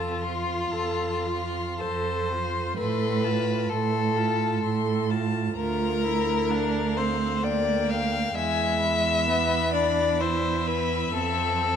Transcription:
0.00 0.60 F2 medium
0.00 1.83 F4 medium
0.00 0.25 A4 soft
0.00 0.24 A5 soft
0.22 0.74 F4 soft
0.22 0.73 C6 soft
0.71 1.68 F2 soft
0.71 1.28 A4 soft
0.71 1.26 A5 soft
1.25 1.80 F4 soft
1.25 1.79 C6 soft
1.79 2.67 F2 medium
1.79 2.34 A4 soft
1.79 2.77 C5 medium
1.79 2.31 A5 soft
2.29 2.78 F4 soft
2.29 2.77 C6 soft
2.77 3.59 A2 medium
2.77 3.26 A4 medium
2.77 3.71 B4 medium
2.77 3.25 C6 soft
3.24 3.72 F4 soft
3.24 3.71 A5 soft
3.69 4.52 A2 medium
3.69 5.09 A4 medium
3.69 4.18 A4 soft
3.69 4.19 C6 soft
4.16 4.63 F4 soft
4.16 4.62 A5 medium
4.63 5.45 A2 medium
4.63 5.11 A4 medium
4.63 5.12 C6 soft
5.10 5.55 F4 soft
5.10 5.56 A5 soft
5.55 8.32 D2 medium
5.55 6.05 F4 medium
5.55 6.98 A#4 medium
5.55 6.52 A#5 medium
6.04 6.52 E4 medium
6.51 7.00 D4 medium
6.51 7.45 F5 medium
6.97 7.45 C4 medium
6.97 7.45 C5 medium
7.43 8.34 A#3 medium
7.43 7.91 D5 medium
7.43 8.35 G5 medium
7.89 8.36 F5 medium
8.35 11.10 E2 medium
8.35 9.29 G#3 medium
8.35 9.73 E5 medium
8.35 8.80 G#5 medium
8.81 10.22 B5 medium
9.28 9.75 B3 medium
9.73 10.22 D4 medium
9.73 10.22 D5 medium
10.20 11.12 E4 medium
10.20 10.68 C5 medium
10.20 11.76 E5 medium
10.66 11.13 B4 medium
11.13 11.76 F2 medium
11.13 11.76 C4 medium
11.13 11.76 A4 medium

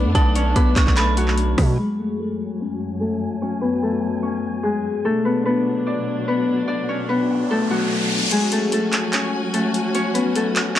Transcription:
0.00 0.98 A3 medium
0.00 1.75 A3 medium
0.00 0.56 B3 medium
0.00 1.75 B3 medium
0.00 0.15 D4 medium
0.00 1.75 D4 medium
0.00 0.71 A4 loud
0.00 0.55 B4 medium
0.00 0.14 D5 medium
0.05 0.15 F#2 loud
0.15 0.54 B1 loud
0.15 0.42 D4 medium
0.15 0.42 D5 loud
0.15 0.53 A5 loud
0.15 kick loud
0.15 closed hi-hat medium
0.35 2.61 C#4 medium
0.35 2.27 C#5 medium
0.35 closed hi-hat medium
0.56 0.76 B1 loud
0.56 3.62 B3 medium
0.56 2.61 B4 medium
0.56 0.75 D6 medium
0.56 kick loud
0.56 closed hi-hat medium
0.76 1.55 B1 loud
0.76 0.96 C#6 medium
0.76 kick medium
0.76 clap loud
0.76 closed hi-hat medium
0.87 kick medium
0.87 clap medium
0.97 1.84 A3 medium
0.97 1.84 A4 medium
0.97 1.35 B5 loud
0.97 clap loud
0.97 closed hi-hat medium
1.17 1.83 F#3 medium
1.17 3.61 F#4 medium
1.17 closed hi-hat medium
1.28 clap medium
1.38 closed hi-hat medium
1.58 1.78 B2 loud
1.58 kick medium
1.58 cross-stick loud
1.58 open hi-hat medium
1.78 5.02 F#2 medium
1.78 5.02 F#3 medium
1.78 4.63 G#3 medium
1.78 2.05 G#4 medium
1.78 5.02 G#5 medium
1.99 2.20 A3 medium
1.99 2.19 A4 medium
2.20 3.01 A3 medium
2.20 3.00 A4 medium
2.61 3.42 C#4 medium
2.61 3.41 C#5 medium
3.01 3.83 A3 medium
3.01 3.82 A4 medium
3.42 4.23 C#4 medium
3.42 4.22 C#5 medium
3.61 5.25 B3 medium
3.61 5.25 B4 medium
3.83 4.69 A3 medium
3.83 4.69 A4 medium
4.23 5.93 C#4 medium
4.23 5.93 C#5 medium
4.63 5.10 G#3 medium
4.63 5.11 G#4 medium
5.05 8.28 B2 medium
5.05 8.28 F#3 medium
5.05 7.51 A3 medium
5.05 8.28 D4 medium
5.05 7.25 A4 loud
5.25 5.46 B3 medium
5.25 5.45 B4 medium
5.45 6.28 B3 medium
5.45 6.27 B4 medium
5.87 6.68 D4 medium
5.87 6.67 D5 medium
6.28 7.09 B3 medium
6.28 7.09 B4 medium
6.68 6.95 D4 medium
6.68 6.95 D5 loud
6.68 riser medium
6.89 9.14 C#4 medium
6.89 8.80 C#5 medium
7.09 10.15 B3 medium
7.09 9.14 B4 medium
7.51 8.38 A3 medium
7.51 8.38 A4 medium
7.71 8.36 F#3 medium
7.71 10.14 F#4 medium
8.31 10.79 F#3 medium
8.31 10.79 G#3 medium
8.31 10.79 C#4 medium
8.31 10.79 F#4 medium
8.31 8.58 G#4 loud
8.31 10.79 G#5 medium
8.31 closed hi-hat medium
8.31 crash medium
8.52 8.73 A3 medium
8.52 8.72 A4 medium
8.52 closed hi-hat medium
8.72 9.54 A3 medium
8.72 9.53 A4 medium
8.72 closed hi-hat medium
8.93 clap medium
8.93 closed hi-hat medium
9.13 9.95 C#4 medium
9.13 9.94 C#5 medium
9.13 clap loud
9.13 closed hi-hat medium
9.54 10.36 A3 medium
9.54 10.35 A4 medium
9.54 closed hi-hat medium
9.74 closed hi-hat medium
9.95 10.76 C#4 medium
9.95 10.75 C#5 medium
9.95 closed hi-hat medium
10.14 10.79 B3 medium
10.14 10.79 B4 medium
10.14 closed hi-hat medium
10.36 10.79 A3 medium
10.36 10.79 A4 medium
10.36 closed hi-hat medium
10.56 clap loud
10.56 closed hi-hat medium
10.76 10.79 C#5 medium
10.76 clap loud
10.76 closed hi-hat medium

